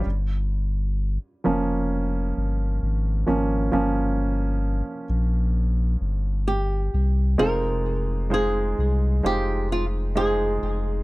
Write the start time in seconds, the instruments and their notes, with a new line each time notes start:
0.06 sub bass G1
1.44 sub bass F1, grand piano F3 A#3 C#4
2.37 sub bass G1
2.82 sub bass G#1
3.26 sub bass G#1, grand piano F3 A#3 C#4
3.71 sub bass G1, grand piano F3 A#3 C#4
5.09 sub bass A#1
6.01 sub bass G1
6.48 nylon-string guitar G4
6.94 sub bass C2
7.38 sub bass F1, grand piano C3 G#3 D#4 F4 C5, nylon-string guitar A#4
8.30 grand piano G#3 D#4 F4 C5, nylon-string guitar G#4
8.78 sub bass C2
9.23 sub bass F1, grand piano G#3 D#4 F4 C5, nylon-string guitar G4
9.72 nylon-string guitar F4
10.15 grand piano G#3 D#4 F4 C5, nylon-string guitar G#4
10.62 sub bass F1